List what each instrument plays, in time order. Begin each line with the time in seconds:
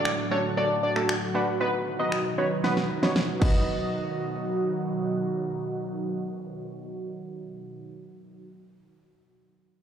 Already playing: analog synth pad A2 D3 F#3 D4 F#4, synth pluck A3 D4 F#4 A4, digital synth lead D5
0.05 finger snap
0.31 synth pluck A3 D4 F#4 A4, digital synth lead C#5
0.57 synth pluck A3 D4 F#4 A4, digital synth lead D5
0.83 digital synth lead D5
0.96 synth pluck A3 D4 F#4 A4, finger snap
1.09 finger snap
1.35 synth pluck A3 D4 F#4 B4
1.60 analog synth pad B2 D#3 F#3 D#4, synth pluck B3 D#4 F#4 B4, digital synth lead B4
1.99 synth pluck B3 D#4 F#4 B4, digital synth lead D#5
2.12 finger snap
2.38 synth pluck B3 D#4 F#4 B4, digital synth lead C#5
2.64 synth pluck B3 D#4 F#4 B4, digital synth lead B4, snare
2.77 snare
3.02 synth pluck B3 D#4 F#4 B4, digital synth lead C#5, snare
3.16 snare
3.40 analog synth pad B2 D#3 F#3 D#4 F#4, synth pluck B3 D#4 F#4, digital synth lead D#5, kick, crash
3.44 synth pluck B4